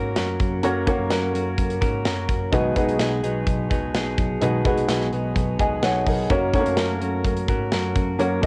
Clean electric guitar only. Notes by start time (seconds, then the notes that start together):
Already playing: C#4 F#4 A#4
0.16 F#3 C#4 F#4 A#4
0.63 F#3 C#4 F#4 A#4
0.88 C#4 F#4 A#4
1.10 F#3 C#4 F#4 A#4
1.34 C#4 F#4 A#4
1.81 C#4 F#4 A#4
2.05 F#3 C#4 F#4 A#4
2.52 B2 D#3 F#3 B3 D#4 G#4
2.76 F#3 B3 D#4 G#4
2.99 F#3 B3 D#4 G#4
3.23 F#3 B3 D#4 G#4
3.70 F#3 B3 D#4 G#4
3.94 F#3 B3 D#4 G#4
4.42 B2 D#3 F#3 B3 D#4 G#4
4.65 F#3 B3 D#4 G#4
4.89 F#3 B3 D#4 G#4
5.13 F#3 B3 D#4 G#4
5.59 F#3 B3 D#4 G#4
5.84 F#3 B3 D#4 G#4
6.31 F#3 C#4 F#4 A#4
6.54 C#4 F#4 A#4
6.77 F#3 C#4 F#4 A#4
7.01 C#4 F#4 A#4
7.49 C#4 F#4 A#4
7.72 F#3 C#4 F#4 A#4
8.19 F#3 C#4 F#4 A#4
8.43 A#4